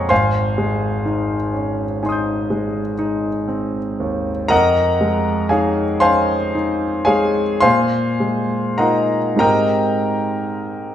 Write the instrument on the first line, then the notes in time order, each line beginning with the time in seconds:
grand piano
Already playing: F2 G#3 C4 C#4 C5 C#5 D#5 F5 F#5 G#5 A#5 C6 C#6 D#6
0.09 G#1 C5 F5 G#5 C6
0.58 G#3
1.06 D#4
1.54 C#4
2.03 D#4 G#5 C6
2.09 D#6 G6
2.50 G#3
2.99 D#4
3.48 C4
4.00 D#2
4.48 F2 A#4 D#5 F#5 A#5
5.01 G#3
5.49 D#4 G#4 C#5 F5 G#5
6.00 C#4 C5 F5 G#5 C6
6.55 D#4
7.05 G#3 G#4 C#5 F5 G#5
7.61 A#2 C5 F5 G#5 C6
8.20 G#3
8.78 D#4 F4 A#4 D#5 F#5 A#5
9.36 G#2 G#3 C4 D#4 G4 A#4 G5 A#5
9.40 D#5